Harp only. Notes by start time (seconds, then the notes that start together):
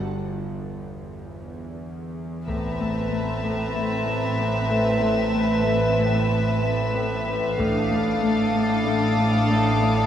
2.48 A2
2.80 A3
3.12 A3
3.44 A2
3.76 A2
4.07 A2
4.39 A2
4.70 A2
5.03 A2
5.35 A3
5.67 A3
5.99 A2
6.31 A2
6.63 A2
6.95 A2
7.27 A2
7.59 A2
7.91 A3
8.23 A3
8.55 A2
8.87 A2
9.18 A2
9.50 A2
9.82 A2